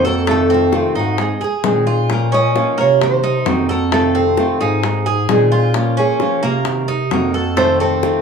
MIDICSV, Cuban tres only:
0, 0, Header, 1, 2, 480
1, 0, Start_track
1, 0, Key_signature, -5, "minor"
1, 0, Tempo, 456274
1, 284, Time_signature, 4, 2, 24, 8
1, 8643, End_track
2, 0, Start_track
2, 0, Title_t, "Cuban tres"
2, 0, Program_c, 0, 25
2, 49, Note_on_c, 0, 69, 73
2, 279, Note_off_c, 0, 69, 0
2, 285, Note_on_c, 0, 57, 81
2, 517, Note_off_c, 0, 57, 0
2, 525, Note_on_c, 0, 60, 75
2, 990, Note_off_c, 0, 60, 0
2, 1004, Note_on_c, 0, 63, 73
2, 1468, Note_off_c, 0, 63, 0
2, 1483, Note_on_c, 0, 68, 75
2, 1948, Note_off_c, 0, 68, 0
2, 1964, Note_on_c, 0, 65, 74
2, 2429, Note_off_c, 0, 65, 0
2, 2441, Note_on_c, 0, 61, 77
2, 2907, Note_off_c, 0, 61, 0
2, 2921, Note_on_c, 0, 58, 82
2, 3386, Note_off_c, 0, 58, 0
2, 3404, Note_on_c, 0, 63, 81
2, 3868, Note_off_c, 0, 63, 0
2, 3882, Note_on_c, 0, 69, 77
2, 4114, Note_off_c, 0, 69, 0
2, 4124, Note_on_c, 0, 57, 81
2, 4355, Note_off_c, 0, 57, 0
2, 4364, Note_on_c, 0, 60, 77
2, 4828, Note_off_c, 0, 60, 0
2, 4845, Note_on_c, 0, 63, 74
2, 5309, Note_off_c, 0, 63, 0
2, 5323, Note_on_c, 0, 68, 79
2, 5788, Note_off_c, 0, 68, 0
2, 5803, Note_on_c, 0, 65, 74
2, 6268, Note_off_c, 0, 65, 0
2, 6281, Note_on_c, 0, 61, 83
2, 6747, Note_off_c, 0, 61, 0
2, 6761, Note_on_c, 0, 58, 88
2, 7227, Note_off_c, 0, 58, 0
2, 7238, Note_on_c, 0, 63, 81
2, 7706, Note_off_c, 0, 63, 0
2, 7723, Note_on_c, 0, 69, 73
2, 7956, Note_off_c, 0, 69, 0
2, 7961, Note_on_c, 0, 57, 78
2, 8195, Note_off_c, 0, 57, 0
2, 8207, Note_on_c, 0, 60, 75
2, 8643, Note_off_c, 0, 60, 0
2, 8643, End_track
0, 0, End_of_file